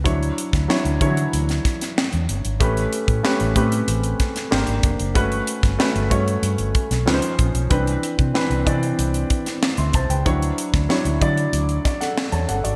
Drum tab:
HH |xxxx-xxxxxxx-xxx|xxxx-xxxxxxx-xxx|xxxx-xxxxxxx-xxx|xxxx-xxxxxxx-xxx|
SD |---oo----oooo---|----o-----ooo---|---oo------oo---|----o------oo---|
BD |o--o--o---o-----|o--o--o---o---o-|o--o--o---o---o-|o--o--o---o---o-|

HH |xxxx-xxxxxxx-xxx|
SD |---oo-----ooo---|
BD |o--o--o---o-----|